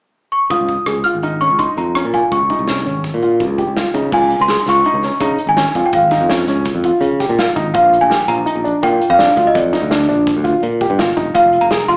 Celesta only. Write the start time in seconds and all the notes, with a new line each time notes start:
0.32 C#6
0.51 D#6
1.04 F6
1.41 C#6
1.59 C6
1.78 A#5
2.14 G#5
2.32 C#6
4.13 G#5
4.41 C6
4.69 C#6
5.21 A#5
5.49 G#5
5.86 G5
5.94 F5
7.75 F5
8.01 G#5
8.28 A#5
8.83 G5
9.10 F5
9.47 D#5
9.58 D5
11.36 F5
11.61 A#5
11.88 C6